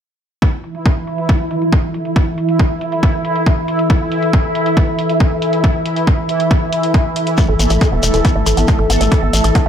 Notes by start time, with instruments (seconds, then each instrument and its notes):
0.42 synth texture E3 E4, ambient pad E4, kick
0.64 closed hi-hat
0.70 ambient pad A4
0.75 closed hi-hat
0.86 kick
0.98 ambient pad E5
1.07 closed hi-hat
1.18 closed hi-hat
1.29 kick
1.51 closed hi-hat
1.62 closed hi-hat
1.73 kick
1.94 closed hi-hat
2.05 closed hi-hat
2.16 kick
2.38 closed hi-hat
2.49 closed hi-hat
2.59 kick
2.81 closed hi-hat
2.92 closed hi-hat
3.03 kick, closed hi-hat
3.25 closed hi-hat
3.36 closed hi-hat
3.46 kick, closed hi-hat
3.68 closed hi-hat
3.79 closed hi-hat
3.90 kick, closed hi-hat
4.12 closed hi-hat
4.23 closed hi-hat
4.33 kick, closed hi-hat
4.55 closed hi-hat
4.66 closed hi-hat
4.77 kick, closed hi-hat
4.99 closed hi-hat
5.09 closed hi-hat
5.20 kick, closed hi-hat
5.42 closed hi-hat
5.53 closed hi-hat
5.64 kick, closed hi-hat
5.86 closed hi-hat
5.96 closed hi-hat
6.07 kick, closed hi-hat
6.29 closed hi-hat
6.40 closed hi-hat
6.51 kick, closed hi-hat
6.73 closed hi-hat
6.83 closed hi-hat
6.94 kick, closed hi-hat
7.16 closed hi-hat
7.27 closed hi-hat
7.38 synth arpeggio sound A3, synth texture A4, kick, closed hi-hat, shekere
7.49 analog synth bass A1, synth arpeggio sound A4
7.59 analog synth bass A1, synth arpeggio sound B3, closed hi-hat, shekere
7.70 analog synth bass A1, synth arpeggio sound A3, closed hi-hat, shekere
7.81 synth arpeggio sound A4, kick, closed hi-hat, shekere
7.92 analog synth bass E1, synth arpeggio sound B3
8.03 analog synth bass E1, synth arpeggio sound A3, closed hi-hat, shekere
8.14 analog synth bass E1, synth arpeggio sound A4, closed hi-hat, shekere
8.25 synth arpeggio sound B3, kick, closed hi-hat, shekere
8.36 analog synth bass A1, synth arpeggio sound A3
8.46 analog synth bass A1, synth arpeggio sound A4, closed hi-hat, shekere
8.57 analog synth bass A1, synth arpeggio sound B3, closed hi-hat, shekere
8.68 synth arpeggio sound A3, kick, closed hi-hat, shekere
8.79 analog synth bass A1, synth arpeggio sound A4
8.90 analog synth bass A1, synth arpeggio sound B3, closed hi-hat, shekere
9.01 analog synth bass A1, synth arpeggio sound A3, closed hi-hat, shekere
9.12 synth arpeggio sound A4, kick, closed hi-hat, shekere
9.23 analog synth bass A1, synth arpeggio sound B3
9.33 analog synth bass A1, synth arpeggio sound A3, closed hi-hat, shekere
9.44 analog synth bass A1, synth arpeggio sound A4, closed hi-hat, shekere
9.55 synth arpeggio sound B3, kick, closed hi-hat, shekere